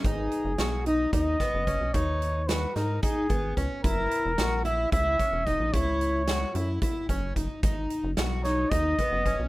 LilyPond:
<<
  \new Staff \with { instrumentName = "Trumpet" } { \time 7/8 \key gis \minor \tempo 4 = 111 gis'4. dis''8 dis''4. | cis''4 b'8 ais'8 gis'4 r8 | ais'4. e''8 e''4 dis''8 | cis''2 r4. |
r4. cis''8 dis''4. | }
  \new Staff \with { instrumentName = "Twelve-string acoustic guitar" } { \time 7/8 \key gis \minor dis'4 fis'8 dis'8 dis'8 b8 cis'8 | dis'4 fis'8 dis'8 dis'8 b8 cis'8 | e'4 fis'8 e'8 e'8 cis'8 dis'8 | e'4 fis'8 e'8 e'8 cis'8 dis'8 |
dis'4 fis'8 dis'8 dis'8 b8 cis'8 | }
  \new Staff \with { instrumentName = "Analog synth bass" } { \clef bass \time 7/8 \key gis \minor gis,,8 r16 fis,,16 b,,4 dis,8 r16 fis,,8 b,,16 | dis,4. gis,8 r8 gis,,8 cis,16 r16 | fis,,8 r16 e,,16 ais,,4 cis,8 r16 e,,8 ais,,16 | cis,4. fis,8 r8 fis,,8 fis,,16 r16 |
gis,,8 r16 fis,,16 b,,4 dis,8 r16 fis,,8 b,,16 | }
  \new DrumStaff \with { instrumentName = "Drums" } \drummode { \time 7/8 <hh bd>8 hh8 <hh sn>8 hh8 <hh bd>8 <hh bd sn>8 <hh bd>8 | <hh bd>8 hh8 <hh sn>8 <hh sn>8 <hh bd>8 <hh bd>8 <hh bd>8 | <hh bd>8 hh8 <hh sn>8 hh8 <hh bd>8 <hh bd>8 <hh bd>8 | <hh bd>8 hh8 <hh sn>8 hh8 <hh bd>8 <hh bd>8 <hh bd>8 |
<hh bd>8 hh8 <hh sn>8 <hh sn>8 <hh bd>8 <hh bd>8 <hh bd>8 | }
>>